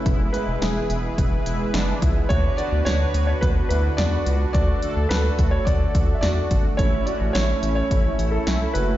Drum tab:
HH |xxxxxxxx|xxxxxxxx|xxxxxxxx|xxxxxxxx|
SD |--o---o-|--o---o-|--o---o-|--o---o-|
BD |o---o--o|o---o---|o--ooo-o|o---o---|